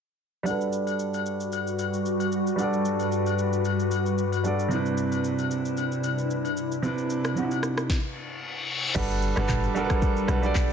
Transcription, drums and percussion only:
0.46 high agogo medium
0.46 shaker medium
0.61 shaker soft
0.73 shaker medium
0.87 high agogo medium
0.87 shaker soft
0.99 shaker medium
1.14 high agogo medium
1.14 shaker medium
1.26 shaker medium
1.40 shaker soft
1.52 high agogo medium
1.52 shaker medium
1.67 shaker soft
1.79 high agogo medium
1.79 shaker medium
1.94 shaker medium
2.06 shaker medium
2.20 high agogo medium
2.20 shaker medium
2.32 shaker medium
2.47 shaker medium
2.58 high agogo medium
2.58 shaker medium
2.73 shaker soft
2.85 shaker medium
2.99 high agogo medium
2.99 shaker medium
3.12 shaker medium
3.26 high agogo medium
3.26 shaker medium
3.39 shaker medium
3.53 shaker medium
3.65 high agogo medium
3.65 shaker medium
3.80 shaker soft
3.91 high agogo medium
3.91 shaker medium
4.06 shaker medium
4.18 shaker medium
4.32 high agogo medium
4.32 shaker soft
4.45 shaker medium
4.59 shaker medium
4.71 high agogo medium
4.71 shaker medium
4.86 shaker soft
4.97 shaker medium
5.12 high agogo medium
5.12 shaker medium
5.24 shaker medium
5.39 high agogo medium
5.39 shaker medium
5.51 shaker medium
5.65 shaker soft
5.77 high agogo medium
5.77 shaker medium
5.92 shaker soft
6.04 high agogo medium
6.04 shaker medium
6.18 shaker medium
6.31 shaker medium
6.45 high agogo medium
6.45 shaker medium
6.57 shaker medium
6.72 shaker medium
6.83 high agogo medium
6.83 shaker medium
6.98 shaker soft
7.10 shaker medium
7.24 cross-stick medium
7.24 high agogo medium
7.24 shaker soft
7.37 low woodblock medium
7.37 shaker medium
7.51 high agogo medium
7.51 shaker medium
7.63 cross-stick medium
7.63 shaker medium
7.78 cross-stick loud
7.78 shaker medium
7.90 kick loud
7.90 snare medium
8.96 kick loud
8.96 crash loud
8.96 shaker medium
9.10 shaker soft
9.22 shaker loud
9.37 cross-stick loud
9.37 shaker medium
9.49 kick medium
9.49 clap loud
9.49 mid tom medium
9.49 shaker medium
9.63 shaker medium
9.76 shaker medium
9.90 kick loud
9.90 cross-stick loud
9.90 shaker medium
10.02 kick loud
10.02 shaker medium
10.17 shaker medium
10.28 cross-stick medium
10.28 shaker medium
10.43 shaker medium
10.55 kick loud
10.55 clap medium
10.55 shaker medium

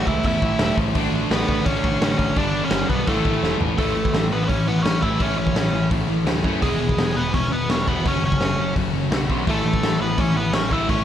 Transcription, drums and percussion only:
0.07 kick medium
0.23 kick loud
0.23 open hi-hat medium
0.42 kick loud
0.59 snare loud
0.59 open hi-hat medium
0.78 kick loud
0.95 kick loud
0.95 open hi-hat medium
1.31 snare loud
1.31 open hi-hat medium
1.49 kick medium
1.66 kick loud
1.66 open hi-hat medium
1.84 kick loud
2.02 snare loud
2.02 open hi-hat medium
2.19 kick medium
2.36 kick loud
2.36 open hi-hat medium
2.71 snare loud
2.71 open hi-hat medium
2.90 kick medium
3.07 kick loud
3.07 open hi-hat medium
3.25 kick loud
3.43 snare medium
3.60 floor tom loud
3.78 kick loud
3.78 open hi-hat medium
4.05 kick medium
4.14 snare loud
4.14 open hi-hat medium
4.50 kick medium
4.50 open hi-hat medium
4.86 snare loud
4.86 open hi-hat medium
5.03 kick medium
5.20 kick loud
5.20 open hi-hat medium
5.47 kick medium
5.56 snare loud
5.56 open hi-hat medium
5.91 kick loud
5.91 open hi-hat medium
6.27 snare loud
6.27 open hi-hat medium
6.44 kick medium
6.62 kick loud
6.62 open hi-hat medium
6.89 kick loud
6.98 snare loud
6.98 open hi-hat medium
7.34 kick loud
7.34 open hi-hat medium
7.70 snare loud
7.70 open hi-hat medium
7.88 kick medium
8.06 kick loud
8.06 open hi-hat medium
8.32 kick medium
8.41 snare medium
8.41 open hi-hat medium
8.76 kick medium
8.76 open hi-hat medium
9.12 snare loud
9.12 open hi-hat medium
9.30 kick medium
9.47 kick loud
9.47 open hi-hat medium
9.74 kick medium
9.83 snare loud
9.83 open hi-hat medium
10.18 kick loud
10.18 open hi-hat medium
10.53 snare loud
10.53 open hi-hat medium
10.71 kick medium
10.89 kick loud
10.89 open hi-hat medium

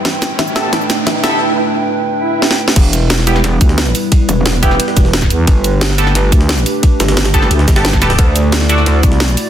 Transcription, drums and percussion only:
0.05 snare medium
0.05 closed hi-hat medium
0.22 snare medium
0.22 closed hi-hat medium
0.22 shaker medium
0.39 snare medium
0.39 closed hi-hat medium
0.47 shaker soft
0.56 snare medium
0.56 closed hi-hat medium
0.56 shaker medium
0.73 snare medium
0.73 closed hi-hat medium
0.81 shaker soft
0.90 snare medium
0.90 closed hi-hat medium
0.90 shaker medium
1.07 snare medium
1.07 closed hi-hat medium
1.24 snare medium
1.24 closed hi-hat medium
1.24 shaker medium
2.42 snare medium
2.51 snare medium
2.68 snare medium
2.76 kick loud
2.76 closed hi-hat loud
2.76 ride medium
2.76 crash loud
2.93 closed hi-hat medium
2.93 ride medium
2.93 shaker medium
3.10 snare loud
3.10 closed hi-hat loud
3.10 ride medium
3.10 shaker soft
3.19 snare soft
3.27 snare soft
3.27 closed hi-hat medium
3.27 ride medium
3.27 shaker medium
3.35 snare soft
3.44 snare soft
3.44 closed hi-hat loud
3.44 ride medium
3.61 kick loud
3.61 closed hi-hat medium
3.61 ride medium
3.61 shaker medium
3.69 snare soft
3.78 snare loud
3.78 closed hi-hat loud
3.78 ride medium
3.86 snare medium
3.86 shaker soft
3.95 closed hi-hat medium
3.95 open hi-hat medium
3.95 shaker medium
4.12 kick loud
4.12 closed hi-hat loud
4.12 ride medium
4.29 closed hi-hat medium
4.29 ride medium
4.29 shaker medium
4.46 snare loud
4.46 closed hi-hat medium
4.46 ride medium
4.46 shaker soft
4.63 kick medium
4.63 closed hi-hat medium
4.63 ride medium
4.63 shaker medium
4.71 snare soft
4.80 closed hi-hat loud
4.80 ride medium
4.88 snare medium
4.97 kick loud
4.97 snare soft
4.97 closed hi-hat medium
4.97 ride medium
4.97 shaker medium
5.05 snare soft
5.13 snare loud
5.13 closed hi-hat loud
5.13 ride medium
5.22 kick medium
5.22 snare medium
5.22 shaker soft
5.30 closed hi-hat medium
5.30 ride medium
5.30 shaker medium
5.47 kick loud
5.47 closed hi-hat medium
5.47 ride medium
5.64 closed hi-hat medium
5.64 ride medium
5.64 shaker medium
5.81 snare loud
5.81 closed hi-hat medium
5.81 ride medium
5.81 shaker soft
5.90 snare soft
5.98 snare soft
5.98 closed hi-hat medium
5.98 ride medium
5.98 shaker medium
6.07 snare soft
6.15 snare soft
6.15 closed hi-hat loud
6.15 ride medium
6.32 kick loud
6.32 closed hi-hat medium
6.32 ride medium
6.32 shaker medium
6.41 snare medium
6.49 snare loud
6.49 closed hi-hat medium
6.49 ride medium
6.58 snare medium
6.58 shaker soft
6.66 closed hi-hat medium
6.66 open hi-hat medium
6.66 shaker medium
6.83 kick loud
6.83 closed hi-hat medium
6.83 ride medium
7.00 snare loud
7.00 closed hi-hat medium
7.00 ride medium
7.00 shaker medium
7.08 snare loud
7.08 ride medium
7.17 snare loud
7.17 closed hi-hat medium
7.17 ride medium
7.17 shaker soft
7.25 snare loud
7.25 ride medium
7.34 kick medium
7.34 closed hi-hat medium
7.34 ride medium
7.34 shaker medium
7.42 snare soft
7.51 closed hi-hat medium
7.51 ride medium
7.59 snare soft
7.68 kick loud
7.68 snare loud
7.68 closed hi-hat medium
7.68 ride medium
7.68 shaker medium
7.76 snare loud
7.76 ride medium
7.85 snare loud
7.85 closed hi-hat medium
7.93 kick medium
7.93 snare medium
7.93 shaker soft
8.02 snare soft
8.02 snare medium
8.02 closed hi-hat medium
8.02 ride medium
8.02 shaker medium
8.10 snare loud
8.10 ride medium
8.19 kick loud
8.19 closed hi-hat medium
8.19 ride medium
8.35 closed hi-hat medium
8.35 ride medium
8.35 shaker medium
8.52 snare loud
8.52 closed hi-hat medium
8.52 ride medium
8.52 shaker soft
8.61 snare soft
8.69 snare soft
8.69 closed hi-hat medium
8.69 ride medium
8.69 shaker medium
8.78 snare soft
8.86 snare soft
8.86 closed hi-hat loud
8.86 ride medium
9.03 kick loud
9.03 closed hi-hat medium
9.03 ride medium
9.03 shaker medium
9.12 snare medium
9.20 snare loud
9.20 closed hi-hat medium
9.20 ride medium
9.29 snare medium
9.29 shaker soft
9.37 closed hi-hat medium
9.37 open hi-hat medium
9.37 shaker medium

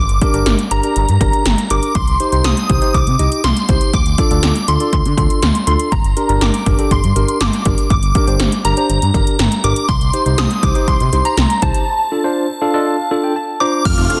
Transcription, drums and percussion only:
0.09 closed hi-hat soft
0.21 kick medium
0.21 closed hi-hat medium
0.34 closed hi-hat soft
0.46 snare loud
0.46 closed hi-hat medium
0.59 closed hi-hat soft
0.71 closed hi-hat medium
0.83 closed hi-hat soft
0.96 closed hi-hat medium
1.09 closed hi-hat medium
1.21 kick medium
1.21 closed hi-hat medium
1.33 closed hi-hat medium
1.45 snare loud
1.45 closed hi-hat medium
1.58 closed hi-hat medium
1.70 closed hi-hat medium
1.83 closed hi-hat soft
1.95 kick loud
1.95 closed hi-hat medium
2.08 closed hi-hat soft
2.20 closed hi-hat medium
2.32 closed hi-hat soft
2.44 snare loud
2.44 closed hi-hat medium
2.57 closed hi-hat soft
2.70 kick medium
2.70 closed hi-hat medium
2.82 closed hi-hat soft
2.94 kick medium
2.94 closed hi-hat medium
3.07 closed hi-hat medium
3.19 closed hi-hat medium
3.32 closed hi-hat medium
3.44 snare loud
3.44 closed hi-hat medium
3.57 closed hi-hat medium
3.69 kick medium
3.69 closed hi-hat medium
3.81 closed hi-hat medium
3.94 kick loud
3.94 closed hi-hat medium
4.06 closed hi-hat soft
4.18 kick medium
4.18 closed hi-hat medium
4.31 closed hi-hat soft
4.43 snare loud
4.43 closed hi-hat medium
4.55 closed hi-hat medium
4.68 closed hi-hat medium
4.80 closed hi-hat soft
4.93 kick medium
4.93 closed hi-hat medium
5.06 closed hi-hat medium
5.18 kick medium
5.18 closed hi-hat medium
5.30 closed hi-hat medium
5.42 snare loud
5.42 closed hi-hat medium
5.55 closed hi-hat medium
5.67 closed hi-hat medium
5.79 closed hi-hat medium
5.92 kick loud
5.92 closed hi-hat medium
6.04 closed hi-hat soft
6.17 closed hi-hat medium
6.29 closed hi-hat soft
6.41 snare loud
6.41 closed hi-hat medium
6.54 closed hi-hat medium
6.66 kick medium
6.66 closed hi-hat medium
6.79 closed hi-hat soft
6.91 kick medium
6.91 closed hi-hat medium
7.04 closed hi-hat medium
7.16 closed hi-hat medium
7.28 closed hi-hat medium
7.41 snare loud
7.41 closed hi-hat medium
7.53 closed hi-hat medium
7.65 kick medium
7.65 closed hi-hat medium
7.78 closed hi-hat medium
7.90 kick loud
7.90 closed hi-hat medium
8.03 closed hi-hat soft
8.15 kick medium
8.15 closed hi-hat medium
8.28 closed hi-hat soft
8.40 snare loud
8.40 closed hi-hat medium
8.52 closed hi-hat medium
8.65 closed hi-hat medium
8.77 closed hi-hat soft
8.90 closed hi-hat medium
9.02 closed hi-hat medium
9.14 kick medium
9.14 closed hi-hat medium
9.27 closed hi-hat medium
9.39 snare loud
9.39 closed hi-hat medium
9.52 closed hi-hat medium
9.64 closed hi-hat medium
9.76 closed hi-hat medium
9.89 kick loud
9.89 closed hi-hat medium
10.01 closed hi-hat soft
10.13 closed hi-hat medium
10.26 closed hi-hat soft
10.38 snare loud
10.38 closed hi-hat medium
10.51 closed hi-hat medium
10.63 kick medium
10.63 closed hi-hat medium
10.75 closed hi-hat soft
10.88 kick medium
10.88 closed hi-hat medium
11.00 closed hi-hat medium
11.13 closed hi-hat medium
11.25 closed hi-hat medium
11.37 snare loud
11.37 closed hi-hat medium
11.50 closed hi-hat medium
11.62 kick medium
11.62 closed hi-hat medium
11.74 closed hi-hat medium
13.85 kick loud
13.85 closed hi-hat medium
13.85 crash medium
13.98 closed hi-hat soft
14.10 closed hi-hat medium

